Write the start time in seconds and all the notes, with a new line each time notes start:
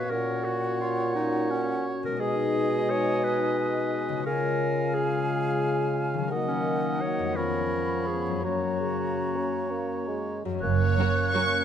Already playing: A#2 B2 B4 F5
0.00 C#4 F#4
0.08 C#4 F#4 A#4 C#5
0.12 A#2 C#5 F#5
0.45 F#4
0.81 F4
1.15 D#4
1.51 C#4
2.03 B2 A#4
2.08 G#3
2.12 D#4
2.17 B2 G#3 G#4 D#5 G#5
2.21 D#4
2.90 C#5
3.24 B4
4.09 C#3
4.13 G#3
4.18 F4
4.22 C#3 A#4 C#5 F5 G#5
4.27 G#3 F4
4.95 G#4
6.14 D#3
6.18 F#3
6.23 D#4
6.28 A#4 D#5 F#5
6.32 D#3 A#3 F#4
6.48 C#4
7.01 A#3 F#4 C#5
7.19 F2
7.23 G#3
7.28 C#4
7.32 A#4 B4
7.37 F3 B3 C#4 C#5 B5
8.07 B3 C#4 G#4
8.27 F#2
8.31 F#3
8.36 C#4
8.40 A#3 C#4 F#4 A#4 A#5
8.44 F#3 C#5
8.81 C#3
9.37 C#4
9.71 A#3
10.08 G#3
10.45 F#2 F#3
10.50 F#3
10.54 C#4
10.58 A#3 C#4 A#4 C#5 F#6
10.63 F#1 F#2 A#3
10.79 C#5
10.97 F#3 C#4 F#4 A#4
11.34 F#3 C#4 F#4 A#4 C#6